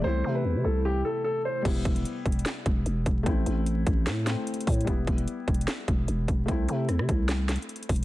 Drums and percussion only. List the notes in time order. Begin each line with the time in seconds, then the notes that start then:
1.65 kick, closed hi-hat, crash
1.85 kick, closed hi-hat
1.96 closed hi-hat
2.05 closed hi-hat
2.26 kick, closed hi-hat
2.32 closed hi-hat
2.39 closed hi-hat
2.46 snare, clap, closed hi-hat
2.66 kick, closed hi-hat
2.86 closed hi-hat
3.06 kick, closed hi-hat
3.26 kick, closed hi-hat
3.46 closed hi-hat
3.66 closed hi-hat
3.87 kick, closed hi-hat
4.07 snare, clap, closed hi-hat
4.27 snare, clap, closed hi-hat
4.47 closed hi-hat
4.54 closed hi-hat
4.60 closed hi-hat
4.67 kick, closed hi-hat, open hi-hat
4.74 closed hi-hat
4.81 closed hi-hat
4.87 kick, closed hi-hat
5.07 kick, closed hi-hat
5.18 closed hi-hat
5.28 closed hi-hat
5.48 kick, closed hi-hat
5.54 closed hi-hat
5.61 closed hi-hat
5.68 snare, clap, closed hi-hat
5.88 kick, closed hi-hat
6.08 closed hi-hat
6.28 kick, closed hi-hat
6.48 kick, closed hi-hat
6.68 closed hi-hat
6.89 cross-stick, closed hi-hat
6.99 cross-stick
7.09 kick, closed hi-hat
7.29 snare, clap, closed hi-hat
7.49 snare, clap, closed hi-hat
7.56 closed hi-hat
7.62 closed hi-hat
7.69 closed hi-hat
7.76 closed hi-hat
7.83 closed hi-hat
7.89 kick, closed hi-hat, open hi-hat
7.96 closed hi-hat